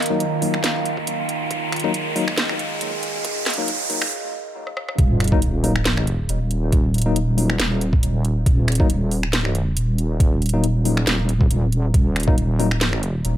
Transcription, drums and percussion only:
0.02 closed hi-hat medium
0.06 closed hi-hat medium
0.20 closed hi-hat medium
0.42 open hi-hat medium
0.54 finger snap medium
0.64 snare loud
0.64 closed hi-hat medium
0.86 closed hi-hat medium
0.97 kick loud
1.07 closed hi-hat medium
1.29 closed hi-hat medium
1.51 kick loud
1.51 closed hi-hat medium
1.72 finger snap medium
1.72 closed hi-hat soft
1.76 closed hi-hat medium
1.80 closed hi-hat medium
1.84 kick loud
1.94 closed hi-hat medium
2.16 open hi-hat medium
2.28 finger snap medium
2.38 snare loud
2.38 closed hi-hat medium
2.49 finger snap medium
2.59 closed hi-hat medium
2.81 closed hi-hat medium
3.03 closed hi-hat medium
3.25 kick loud
3.25 closed hi-hat medium
3.46 finger snap medium
3.46 snare medium
3.46 closed hi-hat soft
3.50 closed hi-hat medium
3.54 closed hi-hat medium
3.68 closed hi-hat medium
3.90 open hi-hat medium
4.02 finger snap medium
4.67 cross-stick medium
4.77 cross-stick medium
4.89 cross-stick medium
4.98 kick loud
4.98 closed hi-hat medium
5.20 finger snap medium
5.20 closed hi-hat medium
5.24 closed hi-hat medium
5.28 closed hi-hat medium
5.32 kick loud
5.42 closed hi-hat medium
5.64 open hi-hat loud
5.76 finger snap medium
5.86 snare loud
5.86 closed hi-hat medium
5.97 finger snap medium
6.07 closed hi-hat medium
6.29 closed hi-hat medium
6.51 closed hi-hat medium
6.72 kick loud
6.72 closed hi-hat medium
6.94 closed hi-hat medium
6.98 closed hi-hat medium
7.02 closed hi-hat medium
7.16 closed hi-hat medium
7.38 open hi-hat medium
7.50 finger snap medium
7.60 snare loud
7.60 closed hi-hat medium
7.81 closed hi-hat medium
7.93 kick loud
8.03 closed hi-hat medium
8.25 closed hi-hat medium
8.46 kick loud
8.46 closed hi-hat medium
8.68 finger snap medium
8.68 closed hi-hat soft
8.72 closed hi-hat medium
8.75 closed hi-hat medium
8.80 kick loud
8.90 closed hi-hat medium
9.11 open hi-hat medium
9.23 finger snap medium
9.33 snare loud
9.33 closed hi-hat medium
9.45 finger snap medium
9.55 closed hi-hat medium
9.77 closed hi-hat medium
9.98 closed hi-hat medium
10.20 kick loud
10.20 closed hi-hat medium
10.42 closed hi-hat soft
10.46 closed hi-hat medium
10.49 closed hi-hat medium
10.64 closed hi-hat medium
10.85 open hi-hat medium
10.97 finger snap medium
11.07 snare loud
11.07 closed hi-hat medium
11.29 closed hi-hat medium
11.41 kick loud
11.51 closed hi-hat medium
11.72 closed hi-hat medium
11.94 kick loud
11.94 closed hi-hat medium
12.16 finger snap medium
12.16 closed hi-hat soft
12.20 closed hi-hat medium
12.23 closed hi-hat medium
12.28 kick loud
12.38 closed hi-hat medium
12.60 open hi-hat medium
12.71 finger snap medium
12.81 snare loud
12.81 closed hi-hat medium
12.93 finger snap medium
13.03 closed hi-hat medium
13.25 closed hi-hat medium

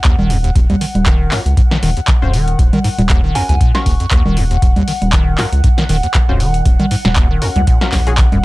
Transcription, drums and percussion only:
0.04 kick loud
0.04 clap loud
0.04 closed hi-hat medium
0.19 low conga medium
0.30 open hi-hat loud
0.44 closed hi-hat medium
0.56 kick loud
0.56 closed hi-hat medium
0.70 closed hi-hat soft
0.70 low conga loud
0.81 open hi-hat loud
0.95 closed hi-hat medium
0.95 low conga loud
1.06 kick loud
1.06 clap loud
1.06 closed hi-hat medium
1.31 snare soft
1.31 clap medium
1.31 open hi-hat loud
1.46 closed hi-hat soft
1.57 kick loud
1.57 closed hi-hat medium
1.71 snare medium
1.71 closed hi-hat soft
1.83 open hi-hat loud
1.97 closed hi-hat soft
2.08 kick loud
2.08 clap loud
2.08 closed hi-hat medium
2.34 open hi-hat loud
2.48 closed hi-hat medium
2.59 kick loud
2.59 closed hi-hat medium
2.73 closed hi-hat soft
2.73 low conga loud
2.84 open hi-hat loud
2.99 closed hi-hat medium
2.99 low conga medium
3.09 kick loud
3.09 clap loud
3.09 closed hi-hat medium
3.35 open hi-hat loud
3.49 closed hi-hat medium
3.61 kick loud
3.61 closed hi-hat medium
3.75 snare medium
3.75 closed hi-hat soft
3.86 kick medium
3.86 open hi-hat loud
4.00 closed hi-hat medium
4.11 kick loud
4.11 clap loud
4.11 closed hi-hat medium
4.26 low conga medium
4.37 open hi-hat loud
4.51 closed hi-hat medium
4.62 kick loud
4.62 closed hi-hat medium
4.76 closed hi-hat soft
4.76 low conga medium
4.88 open hi-hat loud
5.02 closed hi-hat medium
5.02 low conga medium
5.13 kick loud
5.13 clap loud
5.13 closed hi-hat medium
5.38 snare soft
5.38 clap medium
5.38 open hi-hat loud
5.53 closed hi-hat medium
5.64 kick loud
5.64 closed hi-hat medium
5.78 snare medium
5.78 closed hi-hat soft
5.89 open hi-hat loud
6.03 closed hi-hat medium
6.14 kick loud
6.14 clap loud
6.14 closed hi-hat medium
6.40 open hi-hat loud
6.54 closed hi-hat medium
6.66 kick loud
6.66 closed hi-hat medium
6.80 closed hi-hat soft
6.80 low conga medium
6.91 open hi-hat loud
7.05 snare medium
7.05 closed hi-hat medium
7.05 low conga loud
7.16 kick loud
7.16 clap loud
7.16 closed hi-hat medium
7.42 open hi-hat loud
7.56 closed hi-hat medium
7.56 low conga medium
7.67 kick loud
7.67 closed hi-hat medium
7.81 snare medium
7.81 closed hi-hat soft
7.92 kick medium
7.92 snare medium
7.92 clap medium
7.92 open hi-hat loud
8.07 closed hi-hat medium
8.18 kick loud
8.18 clap loud
8.18 closed hi-hat medium
8.32 closed hi-hat soft
8.32 low conga medium

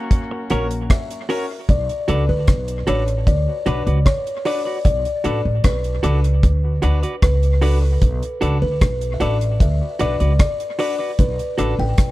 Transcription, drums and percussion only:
0.11 kick loud
0.11 closed hi-hat medium
0.50 closed hi-hat medium
0.71 closed hi-hat medium
0.90 kick loud
0.90 cross-stick loud
0.90 closed hi-hat medium
1.11 closed hi-hat medium
1.29 open hi-hat medium
1.69 kick medium
1.69 closed hi-hat medium
1.89 closed hi-hat soft
2.08 closed hi-hat medium
2.48 kick loud
2.48 cross-stick loud
2.48 closed hi-hat medium
2.68 closed hi-hat medium
2.87 closed hi-hat medium
3.08 closed hi-hat soft
3.27 kick medium
3.27 closed hi-hat medium
3.66 closed hi-hat medium
3.87 closed hi-hat soft
4.06 kick loud
4.06 cross-stick loud
4.06 closed hi-hat medium
4.27 closed hi-hat medium
4.45 open hi-hat medium
4.85 kick medium
4.85 closed hi-hat medium
5.05 closed hi-hat soft
5.24 closed hi-hat medium
5.64 kick medium
5.64 cross-stick loud
5.64 closed hi-hat medium
5.84 closed hi-hat medium
6.03 closed hi-hat medium
6.24 closed hi-hat medium
6.43 kick loud
6.43 closed hi-hat medium
6.82 closed hi-hat medium
7.03 closed hi-hat medium
7.22 kick loud
7.22 cross-stick loud
7.22 closed hi-hat medium
7.43 closed hi-hat medium
7.62 open hi-hat medium
8.02 kick medium
8.02 closed hi-hat medium
8.23 closed hi-hat soft
8.42 closed hi-hat medium
8.81 kick medium
8.81 cross-stick loud
8.81 closed hi-hat medium
9.01 closed hi-hat medium
9.20 closed hi-hat medium
9.41 closed hi-hat medium
9.60 kick loud
9.60 closed hi-hat medium
9.99 closed hi-hat medium
10.20 closed hi-hat medium
10.39 kick loud
10.39 cross-stick loud
10.39 closed hi-hat medium
10.60 closed hi-hat medium
10.79 open hi-hat medium
11.19 kick medium
11.19 closed hi-hat medium
11.39 closed hi-hat soft
11.58 closed hi-hat medium
11.98 kick loud
11.98 cross-stick loud
11.98 closed hi-hat medium

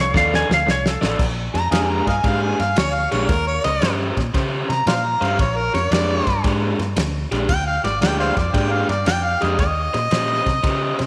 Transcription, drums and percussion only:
0.14 kick loud
0.14 snare loud
0.34 snare medium
0.51 snare loud
0.68 snare medium
0.86 snare medium
1.04 snare medium
1.19 kick loud
1.19 snare soft
1.19 crash loud
1.55 snare soft
1.55 ride medium
1.72 snare loud
1.72 ride medium
2.07 kick medium
2.07 snare soft
2.07 ride medium
2.24 kick loud
2.24 snare soft
2.24 ride medium
2.60 snare soft
2.60 ride medium
2.76 snare loud
2.76 ride loud
3.12 snare soft
3.12 ride medium
3.29 kick loud
3.29 snare soft
3.29 ride medium
3.64 snare soft
3.64 ride medium
3.82 snare loud
3.82 ride medium
4.17 kick medium
4.17 snare soft
4.17 ride medium
4.34 kick loud
4.34 snare soft
4.34 ride medium
4.70 snare soft
4.70 ride medium
4.87 snare loud
4.87 ride medium
5.22 snare soft
5.22 ride medium
5.39 kick loud
5.39 snare soft
5.39 ride medium
5.75 snare soft
5.75 ride medium
5.92 snare loud
5.92 ride medium
6.27 kick medium
6.27 snare soft
6.27 ride medium
6.44 kick loud
6.44 snare soft
6.44 ride medium
6.79 snare soft
6.79 ride medium
6.97 snare loud
6.97 ride loud
7.32 snare soft
7.32 ride medium
7.49 kick loud
7.49 snare soft
7.49 ride loud
7.84 snare soft
7.84 ride medium
8.02 snare loud
8.02 ride medium
8.37 kick medium
8.37 snare soft
8.37 ride medium
8.54 kick loud
8.54 snare soft
8.54 ride medium
8.89 snare soft
8.89 ride medium
9.06 snare loud
9.06 ride medium
9.42 snare soft
9.42 ride medium
9.59 kick loud
9.59 snare soft
9.59 ride medium
9.94 snare soft
9.94 ride medium
10.11 snare loud
10.11 ride medium
10.46 kick medium
10.46 snare soft
10.46 ride medium
10.64 kick loud
10.64 snare soft
10.64 ride medium
10.99 snare soft
10.99 ride medium

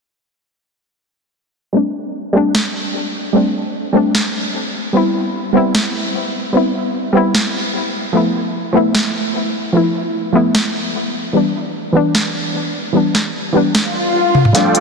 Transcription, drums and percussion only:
2.55 snare loud
4.15 snare loud
5.75 snare loud
7.35 snare loud
8.95 snare loud
10.55 snare loud
12.15 snare loud
13.15 snare medium
13.75 snare loud
14.35 high tom medium
14.45 mid tom medium
14.55 snare soft
14.55 closed hi-hat medium
14.75 closed hi-hat medium

